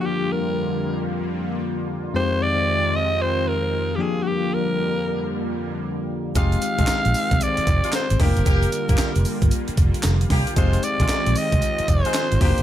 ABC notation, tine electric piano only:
X:1
M:4/4
L:1/8
Q:"Swing 16ths" 1/4=114
K:Fdor
V:1 name="Tine electric piano"
[F,B,DFG]6- [F,B,DFG] z | [F,,A,CEG]6- [F,,A,CEG] [F,B,DFG]- | [F,B,DFG]6- [F,B,DFG] z | [A,CEG]6- [A,CEG] [A,B,DFG]- |
[A,B,DFG]6- [A,B,DFG] z | [A,CEG]6- [A,CEG] [B,DF_G=G] |]